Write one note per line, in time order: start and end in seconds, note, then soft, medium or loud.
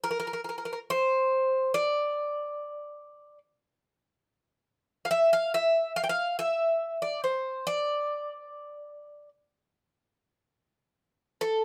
0.04 0.09 A#4 medium
0.11 0.17 A#4 medium
0.20 0.26 A#4 medium
0.27 0.32 A#4 soft
0.33 0.40 A#4 medium
0.44 0.48 A#4 soft
0.49 0.55 A#4 medium
0.58 0.63 A#4 soft
0.65 0.71 A#4 soft
0.73 0.78 A#4 soft
0.90 1.74 C5 medium
1.74 3.38 D5 medium
5.05 5.10 F5 medium
5.11 5.30 E5 medium
5.33 5.51 F5 medium
5.54 5.92 E5 medium
5.96 6.02 F5 medium
6.04 6.09 G5 medium
6.09 6.37 F5 medium
6.39 6.96 E5 medium
7.02 7.20 D5 medium
7.24 7.65 C5 medium
7.67 9.28 D5 medium
11.41 11.64 A4 medium